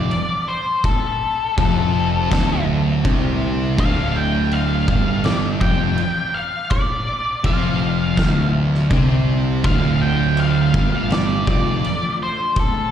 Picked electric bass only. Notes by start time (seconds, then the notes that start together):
1.57 F1
2.31 D1
3.04 C2
3.79 D1
4.88 G1
5.61 F1
7.44 F1
8.90 C2
9.64 D1
10.74 G1
11.47 F1